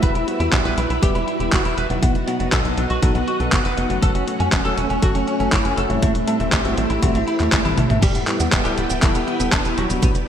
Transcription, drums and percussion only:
0.03 kick loud
0.03 closed hi-hat medium
0.15 closed hi-hat soft
0.28 closed hi-hat medium
0.40 closed hi-hat soft
0.53 kick loud
0.53 clap loud
0.53 closed hi-hat medium
0.65 closed hi-hat soft
0.78 closed hi-hat medium
0.90 closed hi-hat soft
1.03 kick loud
1.03 closed hi-hat medium
1.15 closed hi-hat soft
1.28 closed hi-hat soft
1.40 closed hi-hat soft
1.53 kick loud
1.53 clap loud
1.53 closed hi-hat medium
1.65 closed hi-hat soft
1.78 closed hi-hat medium
1.90 closed hi-hat soft
2.03 kick loud
2.03 closed hi-hat medium
2.15 closed hi-hat soft
2.28 closed hi-hat medium
2.40 closed hi-hat soft
2.53 kick loud
2.53 clap loud
2.53 closed hi-hat medium
2.65 closed hi-hat soft
2.77 closed hi-hat medium
2.90 closed hi-hat soft
3.03 kick loud
3.03 closed hi-hat medium
3.15 closed hi-hat soft
3.28 closed hi-hat soft
3.40 closed hi-hat soft
3.52 kick loud
3.52 clap loud
3.52 closed hi-hat medium
3.65 closed hi-hat soft
3.77 closed hi-hat medium
3.90 closed hi-hat soft
4.02 kick loud
4.02 closed hi-hat medium
4.15 closed hi-hat soft
4.28 closed hi-hat medium
4.40 closed hi-hat soft
4.52 kick loud
4.52 clap loud
4.52 closed hi-hat medium
4.65 closed hi-hat soft
4.78 closed hi-hat medium
4.90 closed hi-hat soft
5.02 kick loud
5.02 closed hi-hat medium
5.15 closed hi-hat soft
5.28 closed hi-hat soft
5.40 closed hi-hat soft
5.53 kick loud
5.53 clap loud
5.53 closed hi-hat medium
5.65 closed hi-hat soft
5.78 closed hi-hat medium
5.90 closed hi-hat soft
6.02 kick loud
6.02 closed hi-hat medium
6.15 closed hi-hat soft
6.28 closed hi-hat medium
6.40 closed hi-hat soft
6.52 kick loud
6.52 clap loud
6.52 closed hi-hat medium
6.65 closed hi-hat soft
6.77 closed hi-hat medium
6.90 closed hi-hat soft
7.02 kick loud
7.02 closed hi-hat loud
7.15 closed hi-hat soft
7.28 closed hi-hat soft
7.40 clap soft
7.40 closed hi-hat soft
7.52 kick loud
7.52 clap loud
7.52 closed hi-hat medium
7.65 closed hi-hat soft
7.65 high tom soft
7.78 closed hi-hat medium
7.78 mid tom medium
7.90 closed hi-hat soft
7.90 mid tom medium
8.03 kick loud
8.03 closed hi-hat loud
8.03 crash loud
8.03 cabasa soft
8.15 closed hi-hat soft
8.15 cabasa soft
8.28 clap medium
8.28 closed hi-hat medium
8.40 closed hi-hat soft
8.40 cabasa medium
8.53 kick loud
8.53 clap loud
8.53 closed hi-hat loud
8.53 cabasa medium
8.65 closed hi-hat soft
8.65 cabasa soft
8.78 closed hi-hat medium
8.90 closed hi-hat soft
8.90 cabasa medium
9.03 kick loud
9.03 clap medium
9.03 closed hi-hat loud
9.03 cabasa medium
9.15 closed hi-hat soft
9.15 cabasa soft
9.28 closed hi-hat soft
9.40 closed hi-hat soft
9.40 cabasa medium
9.53 kick loud
9.53 clap loud
9.53 closed hi-hat medium
9.53 cabasa soft
9.65 closed hi-hat soft
9.65 cabasa soft
9.78 closed hi-hat medium
9.90 closed hi-hat soft
9.90 cabasa medium
10.03 kick loud
10.03 closed hi-hat loud
10.03 cabasa soft
10.15 closed hi-hat soft
10.15 cabasa soft

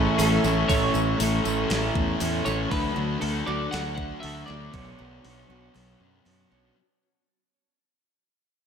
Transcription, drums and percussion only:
0.19 open hi-hat medium
0.19 tambourine loud
0.44 snare soft
0.44 tambourine medium
0.69 kick loud
0.69 open hi-hat medium
0.69 tambourine medium
0.95 tambourine medium
1.20 open hi-hat medium
1.20 tambourine loud
1.45 tambourine medium
1.70 snare loud
1.70 open hi-hat medium
1.70 tambourine soft
1.95 kick medium
2.20 open hi-hat medium
2.20 tambourine loud
2.46 snare soft
2.46 tambourine medium
2.71 kick loud
2.71 open hi-hat medium
3.22 open hi-hat medium
3.73 snare loud
3.73 open hi-hat medium
3.98 kick medium
4.23 open hi-hat medium
4.50 snare soft
4.74 kick loud
4.74 open hi-hat medium
5.25 open hi-hat medium
5.76 open hi-hat medium
6.26 open hi-hat medium

